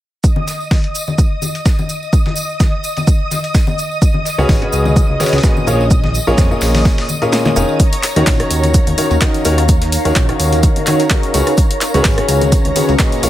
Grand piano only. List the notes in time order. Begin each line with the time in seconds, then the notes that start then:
4.38 C#3 C#4 F#4 G#4 B4 C#5
4.62 C#3 C#4 F#4 G#4 B4 C#5
5.20 C#3 C#4 F#4 G#4 B4 C#5
5.43 A#2 C#4 F#4 G#4 B4 D#5
5.67 A#2 C#4 F4 G#4 A#4 C#5
6.27 A#2 C#4 F4 G#4 A#4 C#5
6.51 A#2 C#4 F4 G#4 A#4 C#5
7.22 A#2 C#4 F4 G#4 A#4 C#5
7.56 D#3 C#4 F4 G#4 A#4 C#5
8.16 D#3 C#4 D#4 F#4 A#4 C#5
8.40 D#3 C#4 D#4 F#4 A#4 C#5
8.98 D#3 C#4 D#4 F#4 A#4 C#5
9.21 D#3 C#4 D#4 F#4 A#4 D#5
9.45 D#3 C#4 D#4 F#4 A#4 C#5
10.05 D#3 C#4 D#4 F#4 A#4 C#5
10.29 D#3 C#4 D#4 F#4 A#4 C#5
10.87 D#3 C#4 D#4 F#4 A#4 C#5
11.11 C#4 D#4 F#4 A#4 D#5
11.34 C#3 C#4 F#4 G#4 B4 C#5
11.94 C#3 C#4 F#4 G#4 B4 C#5
12.18 C#3 C#4 F#4 G#4 B4 C#5
12.76 C#3 C#4 F#4 G#4 B4 C#5
12.99 A#2 C#4 F#4 G#4 B4 D#5
13.23 A#2 C#4 F4 G#4 A#4 C#5